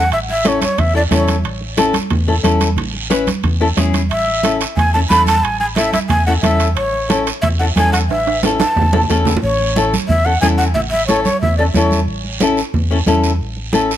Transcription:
Already playing: fingered electric bass E2, shakuhachi F#5
0.11 fingered electric bass A1, shakuhachi E5, high timbale, long guiro
0.29 shakuhachi E5, high conga
0.45 nylon-string guitar C#4 E4 A4, shakuhachi C#5, high conga, high timbale, short guiro
0.61 shakuhachi C#5, high conga, high timbale, short guiro
0.78 fingered electric bass E2, shakuhachi E5, high conga, low conga, high timbale, long guiro
0.94 nylon-string guitar C#4 E4 A4, shakuhachi D5
1.11 fingered electric bass E2, nylon-string guitar C#4 E4 A4, shakuhachi C#5, high conga, low conga, high timbale, short guiro
1.28 high conga, high timbale, short guiro
1.44 fingered electric bass A1, high timbale, long guiro
1.61 high conga
1.77 nylon-string guitar C#4 E4 A4, high conga, high timbale, short guiro
1.94 high conga, high timbale, short guiro
2.10 fingered electric bass E2, high conga, low conga, high timbale, long guiro
2.27 nylon-string guitar C#4 E4 A4
2.43 fingered electric bass E2, nylon-string guitar C#4 E4 A4, high conga, high timbale, short guiro
2.60 high conga, high timbale, short guiro
2.77 fingered electric bass A1, low conga, high timbale, long guiro
2.94 high conga
3.10 nylon-string guitar C#4 E4 B4, high conga, high timbale, short guiro
3.27 high conga, high timbale, short guiro
3.43 fingered electric bass E2, high conga, low conga, high timbale, long guiro
3.61 nylon-string guitar C#4 E4 A4
3.77 fingered electric bass E2, nylon-string guitar C#4 E4 G#4, high conga, high timbale, low timbale, short guiro
3.94 high conga, high timbale, short guiro
4.11 fingered electric bass A1, shakuhachi E5, high timbale, long guiro
4.28 high conga
4.43 nylon-string guitar C#4 E4 A4, high conga, high timbale, short guiro
4.61 high timbale, short guiro
4.77 fingered electric bass E2, shakuhachi G#5, high conga, low conga, high timbale, long guiro
4.94 nylon-string guitar C#4 E4 A4, shakuhachi A5
5.10 fingered electric bass E2, nylon-string guitar C#4 E4 A4, shakuhachi B5, high conga, high timbale, short guiro
5.26 shakuhachi A5, high conga, high timbale, short guiro
5.43 fingered electric bass A1, shakuhachi G#5, high timbale, long guiro
5.60 shakuhachi G#5, high conga
5.76 nylon-string guitar C#4 E4 A4, shakuhachi E5, high conga, high timbale, short guiro
5.93 shakuhachi E5, high conga, high timbale, short guiro
6.10 fingered electric bass E2, shakuhachi G#5, high conga, low conga, high timbale, long guiro
6.26 nylon-string guitar C#4 E4 A4, shakuhachi F#5
6.42 fingered electric bass E2, nylon-string guitar C#4 E4 A4, shakuhachi E5, high conga, low conga, high timbale, short guiro
6.60 high timbale, short guiro
6.76 fingered electric bass A1, shakuhachi C#5, high timbale, long guiro
6.93 high conga
7.09 nylon-string guitar C#4 E4 A4, high conga, high timbale, short guiro
7.27 high timbale, short guiro
7.42 fingered electric bass E2, shakuhachi E5, high conga, low conga, high timbale, long guiro
7.59 nylon-string guitar C#4 E4 A4, shakuhachi F#5
7.76 fingered electric bass E2, nylon-string guitar C#4 E4 A4, shakuhachi G#5, high conga, high timbale, short guiro
7.92 shakuhachi F#5, high conga, high timbale, short guiro
8.09 fingered electric bass A1, shakuhachi E5, high timbale, long guiro
8.26 high conga, high timbale
8.43 nylon-string guitar C#4 E4 A4, high conga, high timbale, short guiro
8.60 shakuhachi A5, high conga, high timbale, short guiro
8.76 fingered electric bass E2, low timbale, long guiro
8.82 low conga
8.93 nylon-string guitar C#4 E4 A4, high conga, low timbale
9.03 low conga
9.09 fingered electric bass E2, nylon-string guitar C#4 E4 A4, low timbale, short guiro
9.25 low conga, low timbale, short guiro
9.37 low conga
9.43 fingered electric bass A1, shakuhachi C#5, long guiro
9.60 high conga
9.76 nylon-string guitar C#4 E4 A4, high conga, short guiro
9.93 high conga, short guiro
10.08 fingered electric bass E2, shakuhachi E5, high conga, low conga, long guiro
10.25 nylon-string guitar C#4 E4 A4, shakuhachi F#5
10.41 fingered electric bass E2, nylon-string guitar C#4 E4 A4, shakuhachi G#5, high conga, short guiro
10.58 shakuhachi F#5, short guiro
10.74 fingered electric bass A1, shakuhachi E5, low conga, long guiro
10.91 shakuhachi E5, high conga
11.07 nylon-string guitar C#4 E4 A4, shakuhachi C#5, high conga, short guiro
11.24 shakuhachi C#5, high conga, short guiro
11.41 fingered electric bass E2, shakuhachi E5, high conga, low conga, long guiro
11.58 nylon-string guitar C#4 E4 A4, shakuhachi D5
11.74 fingered electric bass E2, nylon-string guitar C#4 E4 A4, shakuhachi C#5, high conga, low conga, short guiro
11.91 high conga, short guiro
12.08 fingered electric bass A1, long guiro
12.24 high conga
12.40 nylon-string guitar C#4 E4 A4, high conga, short guiro
12.57 short guiro
12.74 fingered electric bass E2, high conga, low conga, long guiro
12.91 nylon-string guitar C#4 E4 A4
13.06 fingered electric bass E2, nylon-string guitar C#4 E4 A4, high conga, short guiro
13.23 short guiro
13.41 fingered electric bass A1, long guiro
13.56 high conga
13.73 nylon-string guitar C#4 E4 A4, high conga, short guiro
13.91 short guiro

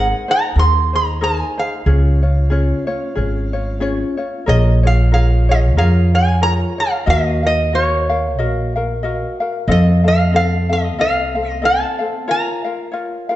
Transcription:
Already playing: upright bass G#1, ukulele D#4 G#4 A#4 C5, resonator guitar played with a steel bar F#5
0.28 ukulele D#4 G#4 C5, resonator guitar played with a steel bar A#5
0.56 upright bass D#2, ukulele D#4 G#4 A#4 C5, resonator guitar played with a steel bar C6
0.93 ukulele D#4 G#4 C5, resonator guitar played with a steel bar A#5
1.21 ukulele D#4 G#4 A#4 C5, resonator guitar played with a steel bar G#5
1.58 ukulele D#4 G#4 C5, resonator guitar played with a steel bar F5
1.86 upright bass C#2, ukulele C#4 F4 G#4 C#5
2.23 ukulele C#4 F4 C#5
2.50 ukulele C#4 F4 G#4 C#5
2.87 ukulele C#4 F4 C#5
3.15 upright bass G#1, ukulele C#4 F4 G#4 C#5
3.53 ukulele C#4 F4 C#5
3.80 ukulele C#4 F4 G#4 C#5
4.17 ukulele C#4 F4 C#5
4.46 upright bass A#1, ukulele F4 G#4 A#4 C#5, resonator guitar played with a steel bar D#5
4.83 ukulele F4 G#4 C#5, resonator guitar played with a steel bar F5
5.12 ukulele F4 G#4 A#4 C#5, resonator guitar played with a steel bar F5
5.49 ukulele F4 G#4 C#5, resonator guitar played with a steel bar D#5
5.77 upright bass F2, ukulele F4 G#4 A#4 C#5, resonator guitar played with a steel bar F5
6.14 ukulele F4 G#4 C#5, resonator guitar played with a steel bar G#5
6.41 ukulele F4 G#4 A#4 C#5, resonator guitar played with a steel bar A#5
6.78 ukulele F4 G#4 C#5, resonator guitar played with a steel bar F5
7.06 upright bass D#2, ukulele F#4 A#4 D#5 F5, resonator guitar played with a steel bar D#5
7.43 ukulele F#4 A#4 F5, resonator guitar played with a steel bar D#5
7.73 ukulele F#4 A#4 D#5 F5, resonator guitar played with a steel bar C#5
8.10 ukulele F#4 A#4 F5
8.37 upright bass A#1, ukulele F#4 A#4 D#5 F5
8.76 ukulele F#4 A#4 F5
9.03 ukulele F#4 A#4 D#5 F5
9.40 ukulele F#4 A#4 F5
9.68 upright bass F2, ukulele C4 A4 D#5 F5, resonator guitar played with a steel bar D#5
10.04 ukulele C4 A4 F5
10.08 resonator guitar played with a steel bar F5
10.33 ukulele C4 A4 D#5 F5, resonator guitar played with a steel bar F5
10.69 ukulele C4 A4 F5, resonator guitar played with a steel bar D#5
10.98 upright bass C2, ukulele C4 A4 D#5 F5, resonator guitar played with a steel bar F5
11.35 ukulele C4 A4 F5
11.51 resonator guitar played with a steel bar D#5
11.62 ukulele C4 A4 D#5 F5, resonator guitar played with a steel bar A5
11.99 ukulele C4 A4 F5
12.28 ukulele F4 A#4 C#5 F5, resonator guitar played with a steel bar A#5
12.64 ukulele F4 A#4 F5
12.92 ukulele F4 A#4 C#5 F5
13.29 ukulele F4 A#4 F5

